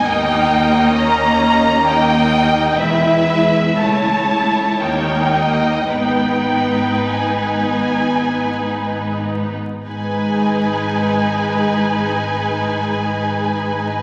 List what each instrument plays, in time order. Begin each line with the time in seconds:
Already playing: violin section D#5
0.06 cello section D#2, double bass section D#2, viola section A#3 D#4, violin section G5
0.96 viola section C#4, violin section A#5
1.87 viola section D#4, violin section D#5 G5
2.79 double bass section E1, cello section E2, viola section G#3 E4, violin section B4 E5
3.29 viola section G#3
3.80 double bass section C#2, cello section C#2, viola section A3 E4, violin section C#5 A5
4.30 viola section A3
4.80 cello section D#2, double bass section D#2, viola section A#3 D#4, violin section C#5 G5
5.34 violin section D#5
5.90 double bass section G#1, cello section G#2, viola section B3 D#4, violin section B4 G5
7.11 violin section G#5
9.87 double bass section G#1, cello section G#2, viola section G#3 D#4, violin section B4 G#5